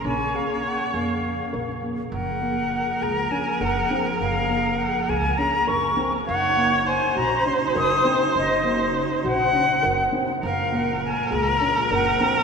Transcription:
<<
  \new Staff \with { instrumentName = "Flute" } { \time 7/8 \key ges \lydian \tempo 4 = 101 aes''8 f''8 ges''8 f''4. r8 | ges''4. bes''8 aes''8 ges''8. r16 | f''4 ges''8 aes''8 bes''8 des'''8. r16 | ges''4 aes''8 bes''8 c'''8 ees'''8. r16 |
ees''4 r8 ges''4. r8 | f''8 ges''8 aes''8 bes''4 ges''8. r16 | }
  \new Staff \with { instrumentName = "Viola" } { \time 7/8 \key ges \lydian des''2. r8 | bes'2.~ bes'8~ | bes'2.~ bes'8 | des''4 c''2~ c''8~ |
c''2. r8 | bes'2.~ bes'8 | }
  \new Staff \with { instrumentName = "Felt piano" } { \time 7/8 \key ges \lydian des'8 aes'4 bes4 bes'8 bes8 | r8 bes4 aes'8 des'8 bes'8 c'8 | r8 bes4 aes'8 des'8 bes'8 c'8 | r8 bes4 ges'8 des'8 bes'8 c'8 |
r8 bes4 ges'8 des'8 bes'8 c'8 | r8 bes4 aes'8 des'8 bes'8 c'8 | }
  \new Staff \with { instrumentName = "String section" } { \clef bass \time 7/8 \key ges \lydian <des bes aes'>2.~ <des bes aes'>8 | <f bes aes'>2.~ <f bes aes'>8~ | <f bes aes'>2.~ <f bes aes'>8 | <des ges ees'>2.~ <des ges ees'>8~ |
<des ges ees'>2.~ <des ges ees'>8 | <bes, f aes>2.~ <bes, f aes>8 | }
  \new Staff \with { instrumentName = "Upright bass" } { \clef bass \time 7/8 \key ges \lydian bes,,8 r4 f,4 bes,,4 | ges,,4. des,8 r8 ges,,8 r8 | ges,,4. des,8 r8 ges,,8 r8 | ges,,4. bes,,8 r8 ges,,8 r8 |
ges,,4. bes,,8 r8 ges,,8 r8 | ges,,4. des,8 r8 ges,,8 r8 | }
>>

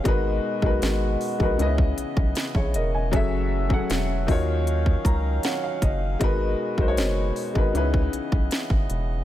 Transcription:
<<
  \new Staff \with { instrumentName = "Grand piano" } { \time 4/4 \key gis \minor \tempo 4 = 78 << { r2. r16 <gis' cis''>16 <ais' dis''>16 <dis'' gis''>16~ | <dis'' gis''>16 r2 r16 ais''8 fis''16 eis''16 dis''8 | r1 | } \\ { <gis dis' fis' ais' b'>8. <gis dis' fis' ais' b'>8. r16 <gis dis' fis' ais' b'>16 <cis cis' dis' e' b' dis''>4.~ <cis cis' dis' e' b' dis''>16 r16 | <fis cis' gis' a' e''>8. <fis cis' gis' a' fis''>8. <dis dis' eis' fis' cis''>4.~ <dis dis' eis' fis' cis''>16 r8. | <gis dis' fis' ais' b'>8. <gis dis' fis' ais' bis' cis''>8. r16 <gis dis' fis' ais' b'>16 <cis cis' dis' e' b'>4.~ <cis cis' dis' e' b'>16 r16 | } >> }
  \new Staff \with { instrumentName = "Harmonium" } { \clef bass \time 4/4 \key gis \minor << { <b, gis fis'>2 <cis e dis''>2 | <e fis fis'>4. <dis fis eis''>2~ <dis fis eis''>8 | <b, gis fis'>2 <cis e dis''>2 | } \\ { b1 | a4. cis'2~ cis'8 | b1 | } >> }
  \new Staff \with { instrumentName = "Analog synth bass" } { \clef bass \time 4/4 \key gis \minor gis,,8 r16 b,,16 gis,,8 r16 ais,,16 cis,8 b,,16 b,,16 r16 ais,,16 e,,8 | fis,,4 e,,8 dis,4 cis,8 r8 fis,,8 | gis,,8 r16 b,,16 fis,,8 r16 gis,,16 cis,8 b,,16 b,,16 r16 gis,,16 e,,8 | }
  \new DrumStaff \with { instrumentName = "Drums" } \drummode { \time 4/4 <hh bd>8. bd16 <hh sn>8 hho16 bd16 hh16 bd16 hh16 bd16 <hh sn>16 bd16 hh8 | <hh bd>8. bd16 <hh sn>8 <hho bd>8 hh16 bd16 <hh bd>8 <hh sn>8 <hh bd>8 | <hh bd>8. bd16 <hh sn>8 hho16 bd16 hh16 bd16 hh16 bd16 <hh sn>16 bd16 hh8 | }
>>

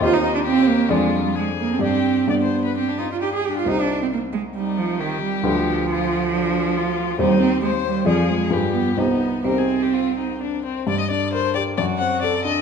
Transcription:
<<
  \new Staff \with { instrumentName = "Violin" } { \time 4/4 \key c \minor \tempo 4 = 134 ees'4 g'4 f'4 aes'4 | g'4 d''16 c''8 b'16 g'8 f'8 ees'8 d'8 | r2 ees'4 g'4~ | g'4 f'4 d'4 f'4 |
ees'4 c''4 aes'4 g'4 | ees'4 bes'16 aes'8 g'16 f'8 ees'8 d'8 c'8 | \key d \phrygian d''16 ees''16 d''8 c''8 d''8 d''8 fis''8 d''8 ees''8 | }
  \new Staff \with { instrumentName = "Grand piano" } { \time 4/4 \key c \minor <ees, c' g' ees''>2 <f, d' aes' d''>2 | <g, d' g' d''>4 <g, d' g' d''>2. | <c, ees' g' c''>1 | <d, d' g' b'>1 |
<ees, c' g' c''>2 <f, f' aes' d''>4 <g, f' aes' b'>4 | <c, ees' g' c''>4 <c, ees' g' c''>2. | \key d \phrygian g,8 d'8 bes'8 g'8 fis,8 c'8 a'8 d'8 | }
  \new Staff \with { instrumentName = "Cello" } { \time 4/4 \key c \minor f'16 ees'8 d'16 c'8 bes8 aes8 g8 aes8 bes16 c'16 | c'4 b4 c'16 d'16 ees'16 f'16 g'16 aes'16 g'16 f'16 | ees'16 d'8 c'16 bes8 aes8 g8 f8 ees8 g8 | f1 |
g8 c'8 aes8 g8 f8 aes8 g8 b8 | b4 c'2 r4 | \key d \phrygian r2 fis'4 a'4 | }
>>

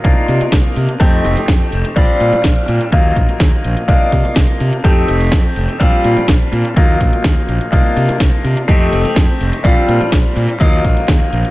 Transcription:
<<
  \new Staff \with { instrumentName = "Grand piano" } { \time 4/4 \key bes \major \tempo 4 = 125 <bes d' ees' f'>2 <a c' ees' g'>2 | <g c' d' f'>2 <ges bes ees' f'>2 | <bes d' ees' f'>2 <a c' ees' g'>2 | <g c' d' f'>2 <ges bes ees' f'>2 |
<bes d' ees' f'>2 <a c' ees' g'>2 | <g c' d' f'>2 <ges bes ees' f'>2 | }
  \new Staff \with { instrumentName = "Fingered electric bass" } { \clef bass \time 4/4 \key bes \major c,8 c8 c,8 c8 f,8 f,,8 f,8 f,,8 | bes,,8 bes,8 bes,,8 bes,8 ees,8 bes,,8 ees,8 bes,,8 | c,8 c8 c,8 c8 f,8 f,,8 f,8 f,,8 | bes,,8 bes,8 bes,,8 bes,8 ees,8 bes,,8 ees,8 bes,,8 |
c,8 c8 c,8 c8 f,8 f,,8 f,8 f,,8 | bes,,8 bes,8 bes,,8 bes,8 ees,8 bes,,8 ees,8 bes,,8 | }
  \new DrumStaff \with { instrumentName = "Drums" } \drummode { \time 4/4 <hh bd>8 hho16 hh16 <hh bd sn>8 hho16 hh16 <hh bd>8 hho16 hh16 <hh bd sn>8 hho16 hh16 | <hh bd>8 hho16 hh16 <hh bd sn>8 hho16 hh16 <hh bd>8 <hho bd>16 hh16 <hh bd sn>8 hho16 hh16 | <hh bd>8 <hho bd>16 hh16 <hh bd sn>8 hho16 hh16 <hh bd>8 hho16 hh16 <hh bd sn>8 hho16 hh16 | <hh bd>8 hho16 hh16 <hh bd sn>8 hho16 hh16 <hh bd>8 <hho bd>16 hh16 <hh bd sn>8 hho16 hh16 |
<hh bd>8 hho16 hh16 <hh bd sn>8 hho16 hh16 <hh bd>8 hho16 hh16 <hh bd sn>8 hho16 hh16 | <hh bd>8 hho16 hh16 <hh bd sn>8 hho16 hh16 <hh bd>8 <hho bd>16 hh16 <hh bd sn>8 hho16 hh16 | }
>>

